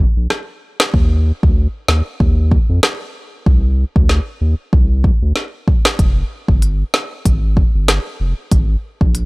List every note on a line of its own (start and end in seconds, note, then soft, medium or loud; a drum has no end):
0.17 0.27 A#1 medium
0.30 cross-stick medium
0.30 snare medium
0.80 snare loud
0.94 1.32 D#2 loud
0.94 kick loud
1.43 1.68 D2 medium
1.43 kick medium
1.88 2.02 D#2 medium
1.88 snare loud
2.20 2.59 D#2 loud
2.20 kick medium
2.51 kick medium
2.69 2.80 F2 medium
2.83 cross-stick medium
2.83 snare loud
3.46 3.85 C2 loud
3.46 kick loud
3.96 4.20 D2 medium
3.96 kick medium
4.09 snare medium
4.41 4.55 D#2 medium
4.73 5.11 C2 loud
4.73 kick medium
5.04 kick medium
5.22 5.33 D2 medium
5.36 snare medium
5.68 kick medium
5.85 snare loud
5.99 6.24 F1 loud
5.99 kick loud
5.99 closed hi-hat medium
6.48 6.84 G1 medium
6.48 kick medium
6.62 closed hi-hat medium
6.94 snare loud
7.25 7.64 G#1 medium
7.25 kick medium
7.25 closed hi-hat medium
7.57 kick medium
7.75 7.99 G1 medium
7.88 cross-stick medium
7.88 snare loud
7.88 closed hi-hat medium
8.20 8.34 F1 loud
8.52 8.76 G#1 loud
8.52 kick loud
8.52 closed hi-hat medium
9.01 9.25 A#1 loud
9.01 kick medium
9.15 closed hi-hat medium